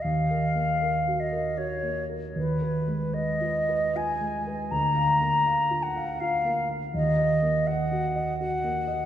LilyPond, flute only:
\new Staff \with { instrumentName = "Flute" } { \time 3/4 \key ees \minor \tempo 4 = 80 f''4. ees''8 des''4 | ces''4 ees''4 aes''4 | bes''4. ges''8 f''8 r8 | ees''4 ges''4 ges''4 | }